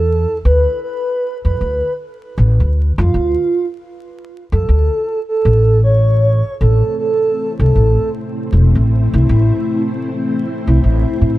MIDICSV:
0, 0, Header, 1, 4, 480
1, 0, Start_track
1, 0, Tempo, 769231
1, 276, Time_signature, 4, 2, 24, 8
1, 7105, End_track
2, 0, Start_track
2, 0, Title_t, "Soft synth lead"
2, 0, Program_c, 0, 80
2, 0, Note_on_c, 0, 69, 99
2, 239, Note_off_c, 0, 69, 0
2, 281, Note_on_c, 0, 71, 102
2, 498, Note_off_c, 0, 71, 0
2, 520, Note_on_c, 0, 71, 100
2, 856, Note_off_c, 0, 71, 0
2, 899, Note_on_c, 0, 71, 97
2, 1208, Note_off_c, 0, 71, 0
2, 1861, Note_on_c, 0, 65, 103
2, 2282, Note_off_c, 0, 65, 0
2, 2823, Note_on_c, 0, 69, 94
2, 3243, Note_off_c, 0, 69, 0
2, 3299, Note_on_c, 0, 69, 96
2, 3607, Note_off_c, 0, 69, 0
2, 3641, Note_on_c, 0, 73, 94
2, 4079, Note_off_c, 0, 73, 0
2, 4123, Note_on_c, 0, 69, 95
2, 4339, Note_off_c, 0, 69, 0
2, 4362, Note_on_c, 0, 69, 99
2, 4697, Note_off_c, 0, 69, 0
2, 4741, Note_on_c, 0, 69, 98
2, 5049, Note_off_c, 0, 69, 0
2, 5703, Note_on_c, 0, 64, 93
2, 6123, Note_off_c, 0, 64, 0
2, 6663, Note_on_c, 0, 64, 98
2, 7083, Note_off_c, 0, 64, 0
2, 7105, End_track
3, 0, Start_track
3, 0, Title_t, "String machine"
3, 0, Program_c, 1, 50
3, 4114, Note_on_c, 1, 72, 83
3, 4116, Note_on_c, 1, 57, 78
3, 4117, Note_on_c, 1, 60, 75
3, 4117, Note_on_c, 1, 64, 77
3, 7105, Note_off_c, 1, 57, 0
3, 7105, Note_off_c, 1, 60, 0
3, 7105, Note_off_c, 1, 64, 0
3, 7105, Note_off_c, 1, 72, 0
3, 7105, End_track
4, 0, Start_track
4, 0, Title_t, "Upright bass"
4, 0, Program_c, 2, 32
4, 0, Note_on_c, 2, 40, 103
4, 151, Note_off_c, 2, 40, 0
4, 281, Note_on_c, 2, 38, 98
4, 402, Note_off_c, 2, 38, 0
4, 903, Note_on_c, 2, 41, 87
4, 987, Note_off_c, 2, 41, 0
4, 1003, Note_on_c, 2, 38, 83
4, 1123, Note_off_c, 2, 38, 0
4, 1483, Note_on_c, 2, 33, 101
4, 1603, Note_off_c, 2, 33, 0
4, 1623, Note_on_c, 2, 38, 88
4, 1826, Note_off_c, 2, 38, 0
4, 1860, Note_on_c, 2, 41, 113
4, 1946, Note_off_c, 2, 41, 0
4, 1960, Note_on_c, 2, 38, 92
4, 2081, Note_off_c, 2, 38, 0
4, 2822, Note_on_c, 2, 41, 95
4, 2907, Note_off_c, 2, 41, 0
4, 2924, Note_on_c, 2, 38, 82
4, 3043, Note_off_c, 2, 38, 0
4, 3402, Note_on_c, 2, 33, 98
4, 3992, Note_off_c, 2, 33, 0
4, 4123, Note_on_c, 2, 33, 94
4, 4243, Note_off_c, 2, 33, 0
4, 4739, Note_on_c, 2, 36, 93
4, 4825, Note_off_c, 2, 36, 0
4, 4839, Note_on_c, 2, 33, 80
4, 4961, Note_off_c, 2, 33, 0
4, 5320, Note_on_c, 2, 28, 103
4, 5441, Note_off_c, 2, 28, 0
4, 5461, Note_on_c, 2, 33, 89
4, 5665, Note_off_c, 2, 33, 0
4, 5700, Note_on_c, 2, 36, 107
4, 5786, Note_off_c, 2, 36, 0
4, 5799, Note_on_c, 2, 33, 97
4, 5920, Note_off_c, 2, 33, 0
4, 6661, Note_on_c, 2, 36, 89
4, 6746, Note_off_c, 2, 36, 0
4, 6762, Note_on_c, 2, 33, 82
4, 6882, Note_off_c, 2, 33, 0
4, 6998, Note_on_c, 2, 45, 84
4, 7105, Note_off_c, 2, 45, 0
4, 7105, End_track
0, 0, End_of_file